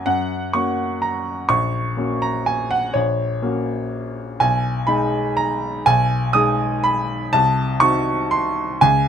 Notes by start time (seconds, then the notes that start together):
0.06 F#2 F#5
0.53 A#3 C#4 F#4 C#6
1.02 A#5
1.49 A#1 C#6
1.97 A#3 C#4 F#4
2.22 A#5
2.46 G#5
2.71 F#5
2.94 A#1 C#5
3.42 A#3 C#4 F#4
4.40 B1 G#5
4.87 G#3 D#4 G#4 B5
5.37 A#5
5.86 B1 G#5
6.33 G#3 D#4 G#4 D#6
6.84 B5
7.33 C2 A5
7.80 C4 D#4 F#4 C#6
8.31 C6
8.81 C#2 G#5